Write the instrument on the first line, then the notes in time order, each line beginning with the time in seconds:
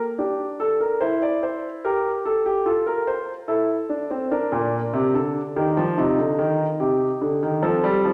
grand piano
Already playing: A#3
0.18 D4 G4
0.60 A4
0.81 A#4
1.01 E4 C5
1.22 D5
1.43 C5
1.85 G4 A#4
2.25 A4
2.46 G4
2.66 F4 A4
2.87 A#4
3.07 C5
3.48 E4 A4
3.89 D4
4.11 C4
4.31 D4 A#4
4.52 A#2
4.93 C3
5.14 D3 A4
5.56 D#3 G4
5.77 F3
5.98 C3 D#4 F4
6.18 D3
6.39 D#3
6.80 C3 G4
7.21 D3
7.43 D#3
7.62 F3 C4 A4
7.84 G3
8.05 F3